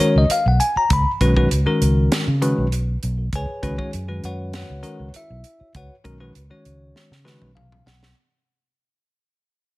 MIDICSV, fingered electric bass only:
0, 0, Header, 1, 3, 480
1, 0, Start_track
1, 0, Tempo, 605449
1, 712, Time_signature, 4, 2, 24, 8
1, 7750, End_track
2, 0, Start_track
2, 0, Title_t, "Fingered electric bass"
2, 0, Program_c, 0, 33
2, 122, Note_on_c, 0, 37, 63
2, 217, Note_off_c, 0, 37, 0
2, 362, Note_on_c, 0, 35, 68
2, 456, Note_off_c, 0, 35, 0
2, 718, Note_on_c, 0, 37, 78
2, 820, Note_off_c, 0, 37, 0
2, 958, Note_on_c, 0, 35, 75
2, 1157, Note_off_c, 0, 35, 0
2, 1200, Note_on_c, 0, 37, 68
2, 1302, Note_off_c, 0, 37, 0
2, 1439, Note_on_c, 0, 37, 75
2, 1639, Note_off_c, 0, 37, 0
2, 1803, Note_on_c, 0, 49, 78
2, 2003, Note_off_c, 0, 49, 0
2, 2044, Note_on_c, 0, 35, 62
2, 2341, Note_off_c, 0, 35, 0
2, 2404, Note_on_c, 0, 35, 80
2, 2602, Note_off_c, 0, 35, 0
2, 2637, Note_on_c, 0, 37, 79
2, 2741, Note_off_c, 0, 37, 0
2, 2878, Note_on_c, 0, 37, 69
2, 2982, Note_off_c, 0, 37, 0
2, 3121, Note_on_c, 0, 42, 70
2, 3321, Note_off_c, 0, 42, 0
2, 3359, Note_on_c, 0, 42, 71
2, 3665, Note_off_c, 0, 42, 0
2, 3722, Note_on_c, 0, 37, 80
2, 3819, Note_off_c, 0, 37, 0
2, 3961, Note_on_c, 0, 37, 65
2, 4058, Note_off_c, 0, 37, 0
2, 4204, Note_on_c, 0, 35, 61
2, 4300, Note_off_c, 0, 35, 0
2, 4556, Note_on_c, 0, 37, 73
2, 4662, Note_off_c, 0, 37, 0
2, 4797, Note_on_c, 0, 35, 77
2, 4999, Note_off_c, 0, 35, 0
2, 5039, Note_on_c, 0, 37, 65
2, 5143, Note_off_c, 0, 37, 0
2, 5278, Note_on_c, 0, 37, 65
2, 5479, Note_off_c, 0, 37, 0
2, 5638, Note_on_c, 0, 49, 73
2, 5841, Note_off_c, 0, 49, 0
2, 5879, Note_on_c, 0, 35, 60
2, 6178, Note_off_c, 0, 35, 0
2, 6232, Note_on_c, 0, 35, 66
2, 6435, Note_off_c, 0, 35, 0
2, 7750, End_track
3, 0, Start_track
3, 0, Title_t, "Muted fingered electric bass strokes"
3, 231, Note_on_c, 9, 29, 30
3, 310, Note_off_c, 9, 29, 0
3, 602, Note_on_c, 9, 29, 32
3, 681, Note_off_c, 9, 29, 0
3, 2769, Note_on_c, 9, 29, 29
3, 2848, Note_off_c, 9, 29, 0
3, 4079, Note_on_c, 9, 29, 29
3, 4158, Note_off_c, 9, 29, 0
3, 4445, Note_on_c, 9, 29, 31
3, 4524, Note_off_c, 9, 29, 0
3, 7750, End_track
0, 0, End_of_file